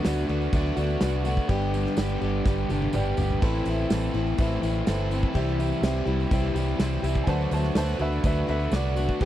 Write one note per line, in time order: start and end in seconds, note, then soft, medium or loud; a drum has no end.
0.03 0.23 D2 loud
0.03 0.52 D3 loud
0.03 0.28 F#3 medium
0.03 0.30 A3 medium
0.03 0.27 B3 medium
0.03 0.30 D4 loud
0.03 0.46 F#4 medium
0.03 0.27 F#4 medium
0.03 0.47 B4 medium
0.03 0.47 D5 loud
0.03 snare loud
0.03 tambourine loud
0.03 crash medium
0.28 0.47 D2 medium
0.28 0.53 A3 medium
0.28 0.52 B3 medium
0.28 0.54 D4 medium
0.28 0.55 F#4 medium
0.28 crash medium
0.41 tambourine soft
0.51 0.71 D2 loud
0.51 1.00 D3 medium
0.51 0.76 F#3 medium
0.51 0.78 A3 loud
0.51 0.77 B3 medium
0.51 0.77 D4 medium
0.51 0.95 F#4 medium
0.51 0.95 B4 medium
0.51 0.95 D5 medium
0.51 kick loud
0.51 tambourine medium
0.51 crash medium
0.56 0.75 F#4 loud
0.66 tambourine soft
0.76 0.95 D2 medium
0.76 1.01 A3 medium
0.76 1.25 B3 medium
0.76 1.02 D4 medium
0.76 1.03 F#4 medium
0.76 tambourine medium
0.76 crash medium
0.90 tambourine soft
1.01 1.37 C2 medium
1.01 1.48 D3 medium
1.01 1.27 A3 medium
1.01 1.26 D4 medium
1.01 1.43 F#4 medium
1.01 1.24 F#4 medium
1.01 1.43 B4 medium
1.01 1.43 D5 loud
1.01 snare loud
1.01 tambourine medium
1.01 crash medium
1.13 tambourine soft
1.25 1.49 A3 medium
1.25 1.48 B3 medium
1.25 1.49 D4 medium
1.25 1.48 F#4 medium
1.25 tambourine medium
1.25 crash medium
1.37 kick medium
1.37 tambourine soft
1.48 1.85 G1 medium
1.48 1.96 G2 medium
1.48 1.97 D3 loud
1.48 1.76 G3 medium
1.48 1.76 B3 medium
1.48 1.73 D4 loud
1.48 1.90 G4 loud
1.48 1.90 B4 medium
1.48 1.90 D5 loud
1.48 kick loud
1.48 tambourine soft
1.48 crash medium
1.52 1.72 G4 loud
1.61 tambourine soft
1.74 1.98 G3 medium
1.74 1.99 B3 medium
1.74 1.99 D4 medium
1.74 2.00 G4 medium
1.74 tambourine medium
1.74 crash medium
1.85 snare soft
1.85 tambourine soft
1.97 2.15 G1 medium
1.97 2.44 G2 medium
1.97 2.45 D3 medium
1.97 2.24 G3 loud
1.97 2.23 B3 medium
1.97 2.22 D4 loud
1.97 2.39 G4 medium
1.97 2.39 B4 medium
1.97 2.39 D5 medium
1.97 snare loud
1.97 tambourine medium
1.97 crash medium
2.01 2.21 G4 loud
2.09 tambourine soft
2.21 2.40 G1 medium
2.21 2.46 G3 medium
2.21 2.47 B3 medium
2.21 2.47 D4 medium
2.21 2.48 G4 medium
2.21 crash medium
2.45 2.64 G1 medium
2.45 2.94 G2 loud
2.45 2.94 D3 loud
2.45 2.73 G3 medium
2.45 2.72 B3 loud
2.45 2.71 D4 loud
2.45 2.87 G4 medium
2.45 2.69 G4 loud
2.45 2.87 B4 medium
2.45 2.87 D5 medium
2.45 kick loud
2.45 snare medium
2.45 tambourine medium
2.58 tambourine soft
2.69 2.87 G1 medium
2.69 2.94 B3 medium
2.69 2.95 D4 medium
2.69 2.96 G4 medium
2.69 high tom medium
2.69 tambourine medium
2.74 2.92 G3 medium
2.82 high tom medium
2.82 tambourine soft
2.93 3.11 G1 medium
2.93 3.20 G3 medium
2.93 3.18 B3 medium
2.93 3.18 D4 medium
2.93 3.35 G4 medium
2.93 3.36 B4 medium
2.93 3.36 D5 loud
2.93 mid tom loud
2.93 tambourine medium
2.97 3.16 G4 medium
3.05 tambourine soft
3.17 3.36 G1 medium
3.17 3.42 G3 medium
3.17 3.41 B3 medium
3.17 3.41 D4 medium
3.17 3.40 G4 medium
3.17 floor tom loud
3.17 tambourine medium
3.30 floor tom medium
3.30 tambourine soft
3.42 3.60 A1 medium
3.42 3.89 A2 medium
3.42 3.91 E3 medium
3.42 3.69 A3 medium
3.42 3.68 C4 loud
3.42 3.67 E4 loud
3.42 3.83 A4 loud
3.42 3.84 B4 loud
3.42 3.84 C5 loud
3.42 kick loud
3.42 tambourine soft
3.42 splash medium
3.42 crash medium
3.55 tambourine soft
3.65 3.84 A1 medium
3.65 3.92 C4 medium
3.65 3.93 E4 medium
3.65 tambourine medium
3.65 crash medium
3.70 3.90 A3 medium
3.90 4.09 A1 medium
3.90 4.37 A2 medium
3.90 4.39 E3 medium
3.90 4.17 A3 loud
3.90 4.14 B3 medium
3.90 4.16 C4 loud
3.90 4.14 E4 loud
3.90 4.32 A4 medium
3.90 4.32 B4 medium
3.90 4.32 C5 medium
3.90 snare loud
3.90 tambourine loud
3.90 crash medium
4.14 4.32 A1 medium
4.14 4.39 B3 medium
4.14 4.40 C4 medium
4.14 4.40 E4 medium
4.14 tambourine soft
4.14 crash medium
4.18 4.39 A3 medium
4.27 tambourine soft
4.38 4.56 A1 medium
4.38 4.86 A2 medium
4.38 4.86 E3 medium
4.38 4.64 A3 medium
4.38 4.63 B3 medium
4.38 4.63 C4 loud
4.38 4.61 E4 loud
4.38 4.80 A4 medium
4.38 4.80 B4 medium
4.38 4.81 C5 medium
4.38 kick loud
4.38 tambourine medium
4.38 crash medium
4.51 tambourine soft
4.62 4.81 A1 medium
4.62 4.87 A3 medium
4.62 4.88 C4 medium
4.62 4.89 E4 medium
4.62 tambourine medium
4.62 crash medium
4.75 tambourine soft
4.87 5.23 G1 medium
4.87 5.34 E3 medium
4.87 5.13 A3 medium
4.87 5.12 C4 medium
4.87 5.10 E4 medium
4.87 5.29 A4 medium
4.87 5.29 B4 medium
4.87 5.29 C5 loud
4.87 snare loud
4.87 tambourine medium
4.87 crash medium
5.00 tambourine soft
5.11 5.35 A3 medium
5.11 5.34 B3 medium
5.11 5.34 C4 medium
5.11 5.33 E4 medium
5.11 tambourine medium
5.11 crash medium
5.23 kick medium
5.34 5.71 C2 medium
5.34 5.81 C3 medium
5.34 5.82 E3 medium
5.34 5.61 G3 loud
5.34 5.60 C4 medium
5.34 5.83 E4 medium
5.34 5.83 G4 medium
5.34 5.77 G4 loud
5.34 5.77 C5 medium
5.34 5.77 E5 loud
5.34 kick loud
5.34 tambourine soft
5.34 crash medium
5.38 5.58 E4 loud
5.48 tambourine soft
5.59 5.83 G3 medium
5.59 5.84 C4 medium
5.59 5.85 E4 medium
5.59 tambourine medium
5.59 crash medium
5.72 tambourine soft
5.82 6.00 C2 medium
5.82 6.30 C3 loud
5.82 6.31 E3 loud
5.82 6.10 G3 loud
5.82 6.08 C4 loud
5.82 6.24 G4 medium
5.82 6.04 G4 medium
5.82 6.25 C5 medium
5.82 6.25 E5 loud
5.82 snare loud
5.82 tambourine medium
5.82 crash medium
5.86 6.06 E4 loud
6.05 6.25 C2 medium
6.05 6.33 E4 medium
6.05 6.30 G4 medium
6.05 crash medium
6.10 6.32 G3 medium
6.10 6.32 C4 medium
6.20 tambourine soft
6.31 6.49 C2 loud
6.31 6.79 C3 medium
6.31 6.78 E3 loud
6.31 6.57 G3 medium
6.31 6.56 C4 loud
6.31 6.53 E4 medium
6.31 6.73 G4 medium
6.31 6.54 G4 medium
6.31 6.73 C5 medium
6.31 6.73 E5 medium
6.31 kick loud
6.31 tambourine medium
6.31 crash medium
6.44 tambourine soft
6.54 6.73 C2 medium
6.54 6.80 C4 medium
6.54 6.81 E4 medium
6.54 7.02 G4 medium
6.54 tambourine medium
6.54 crash medium
6.58 6.79 G3 soft
6.68 tambourine soft
6.79 6.97 C2 medium
6.79 7.26 E3 medium
6.79 7.06 G3 medium
6.79 7.04 C4 medium
6.79 7.02 E4 medium
6.79 7.21 G4 medium
6.79 7.21 C5 medium
6.79 7.21 E5 loud
6.79 snare loud
6.79 tambourine loud
6.79 crash medium
6.92 tambourine soft
7.03 7.21 C2 medium
7.03 7.27 C4 medium
7.03 7.26 E4 medium
7.03 7.27 G4 medium
7.03 tambourine medium
7.03 crash medium
7.07 7.28 G3 medium
7.15 kick medium
7.23 7.46 D2 medium
7.23 7.74 D3 medium
7.23 7.27 G#5 medium
7.23 kick loud
7.23 crash medium
7.28 7.74 F#3 medium
7.28 7.54 A3 loud
7.28 7.78 B3 medium
7.28 7.53 D4 loud
7.28 7.69 F#4 loud
7.28 7.50 F#4 loud
7.28 7.69 B4 loud
7.28 7.50 C5 medium
7.28 7.70 D5 loud
7.28 7.52 A5 medium
7.28 tambourine soft
7.41 tambourine soft
7.51 7.70 D2 loud
7.51 7.75 A3 medium
7.51 7.78 D4 medium
7.51 7.78 F#4 medium
7.51 7.75 C5 medium
7.51 7.76 A5 medium
7.51 tambourine medium
7.51 crash medium
7.63 snare soft
7.63 tambourine soft
7.75 7.94 D2 loud
7.75 8.22 D3 medium
7.75 8.00 F#3 medium
7.75 8.01 A3 loud
7.75 8.00 B3 medium
7.75 8.01 D4 loud
7.75 8.18 F#4 medium
7.75 7.98 F#4 loud
7.75 8.18 B4 medium
7.75 7.99 C5 medium
7.75 8.18 E5 loud
7.75 8.00 A5 medium
7.75 snare loud
7.75 tambourine loud
7.75 crash medium
7.99 8.18 D2 medium
7.99 8.23 A3 medium
7.99 8.24 B3 medium
7.99 8.25 D4 medium
7.99 8.26 F#4 medium
7.99 8.23 B4 medium
7.99 8.24 E5 medium
7.99 tambourine soft
7.99 crash medium
8.12 tambourine soft
8.24 8.42 D2 medium
8.24 8.70 D3 loud
8.24 8.48 F#3 medium
8.24 8.50 A3 loud
8.24 8.48 B3 medium
8.24 8.48 D4 loud
8.24 8.66 F#4 medium
8.24 8.47 F#4 medium
8.24 8.66 B4 medium
8.24 8.47 B4 medium
8.24 8.66 D5 medium
8.24 8.49 E5 medium
8.24 kick loud
8.24 tambourine medium
8.24 crash medium
8.36 tambourine soft
8.48 8.66 D2 medium
8.48 8.72 A3 medium
8.48 8.97 B3 medium
8.48 8.73 D4 medium
8.48 8.74 F#4 medium
8.48 8.71 B4 medium
8.48 8.73 E5 medium
8.48 crash medium
8.60 tambourine soft
8.71 9.08 C2 loud
8.71 9.19 D3 medium
8.71 8.99 A3 medium
8.71 8.97 D4 medium
8.71 9.14 F#4 medium
8.71 8.95 F#4 medium
8.71 9.14 B4 medium
8.71 9.14 D5 medium
8.71 9.25 D5 medium
8.71 snare loud
8.71 tambourine medium
8.71 crash medium
8.97 9.21 A3 medium
8.97 9.21 B3 medium
8.97 9.20 D4 medium
8.97 9.19 F#4 medium
8.97 tambourine medium
8.97 crash medium
9.08 kick medium
9.08 tambourine soft
9.20 9.25 G1 loud
9.20 9.25 G2 medium
9.20 9.25 D3 loud
9.20 9.25 G3 loud
9.20 9.25 B3 loud
9.20 9.25 D4 medium
9.20 9.25 G4 loud
9.20 9.25 B4 medium
9.20 kick loud
9.20 tambourine soft
9.20 crash medium